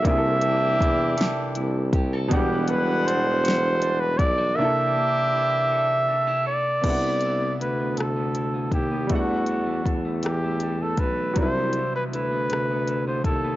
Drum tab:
CC |------|------|------|x-----|
HH |xxxxxx|xxxxxx|------|xxxxxx|
SD |---o--|---o--|------|---r--|
BD |o-o--o|o----o|------|o----o|

CC |------|------|
HH |xxxxxx|xxxxxx|
SD |---r--|---r--|
BD |o-o--o|o----o|